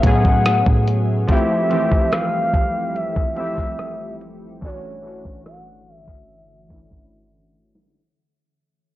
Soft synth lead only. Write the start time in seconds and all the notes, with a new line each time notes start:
0.05 F#5
1.30 E5
2.12 F5
2.95 E5
3.37 E5
4.64 C#5
5.46 F#5
5.88 E5